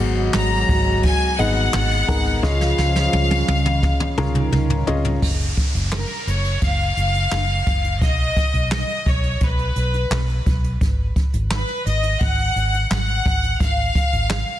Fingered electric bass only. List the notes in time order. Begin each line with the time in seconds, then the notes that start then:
0.00 G#1
0.35 G#1
0.69 G#1
1.39 G#1
1.74 G#1
2.08 G#1
2.44 C#2
2.78 C#2
3.13 C#2
3.48 C#2
4.18 C#2
4.53 C#2
4.88 C#2
5.22 F#1
5.75 F#1
6.27 F#1
6.62 F#1
6.97 F#1
7.32 F#1
7.67 F#1
8.01 B1
8.54 B1
9.06 B1
9.41 B1
9.76 B1
10.10 B1
10.46 B1
10.81 G#1
11.34 G#1
11.86 G#1
12.21 G#1
12.56 G#1
12.91 G#1
13.26 G#1
13.61 G#1
14.13 G#1